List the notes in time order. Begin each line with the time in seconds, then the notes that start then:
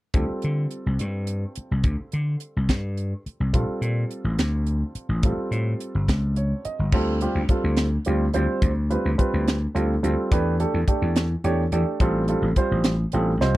0.14 D2 G3 C4 F4 A4, kick, closed hi-hat
0.30 muted slap bass stroke
0.42 D3, closed hi-hat
0.71 closed hi-hat
0.86 C2
0.99 G2, closed hi-hat
1.27 closed hi-hat
1.55 muted slap bass stroke, closed hi-hat
1.71 C2
1.84 D2, kick, closed hi-hat
2.12 D3, closed hi-hat
2.40 closed hi-hat
2.56 C2
2.69 G2, kick, snare, closed hi-hat
2.97 closed hi-hat
3.26 muted slap bass stroke, closed hi-hat
3.40 C2
3.53 A#1 G3 C4 F4 A4, kick, closed hi-hat
3.68 muted slap bass stroke
3.81 A#2, closed hi-hat
4.11 closed hi-hat
4.24 A1
4.38 D2, snare, closed hi-hat
4.67 closed hi-hat
4.95 muted slap bass stroke, closed hi-hat
5.09 A1
5.23 A1 G3 C4 F4 A4, kick, closed hi-hat
5.51 A2, closed hi-hat
5.80 closed hi-hat
5.95 G1
6.08 C#2, kick, snare, closed hi-hat
6.36 C#5, closed hi-hat
6.65 D#5, muted slap bass stroke, closed hi-hat
6.79 G1
6.92 D2 G3 C4 F4 A4, kick, crash
7.21 G3 C4 F4 G4, closed hi-hat
7.35 D2
7.49 G3 C4 F4 A4, muted slap bass stroke, kick, closed hi-hat
7.64 D2
7.77 snare, closed hi-hat
8.05 D2 G3 C4 F4 G4, closed hi-hat
8.34 D2 G3 C4 F4 C5, closed hi-hat
8.62 D2, kick, closed hi-hat
8.90 G3 C4 F4 B4, closed hi-hat
9.05 D2
9.18 G3 C4 F4 B4, muted slap bass stroke, kick, closed hi-hat
9.34 D2
9.48 snare, closed hi-hat
9.75 D2 G3 C4 F4 A4, closed hi-hat
10.03 D2 G3 C4 F4 A4, closed hi-hat
10.32 E2 A3 D4 G4 B4, kick, closed hi-hat
10.60 A3 D4 G4 A4, closed hi-hat
10.74 E2
10.88 A3 D4 G4 A4, muted slap bass stroke, kick, closed hi-hat
11.02 E2
11.16 snare, closed hi-hat
11.44 E2 A3 D4 G4 C#5, closed hi-hat
11.72 E2 A3 D4 G4 A4, closed hi-hat
12.00 A1 G3 C4 F4 A4, kick, closed hi-hat
12.28 G3 C4 F4 A4, closed hi-hat
12.42 A1
12.56 G3 C4 F4 C5, kick, closed hi-hat
12.71 A1
12.84 snare, closed hi-hat
13.12 A1 G3 C4 F4 A4 G5, closed hi-hat
13.41 C2 G3 C4 F4 C5 D#5, snare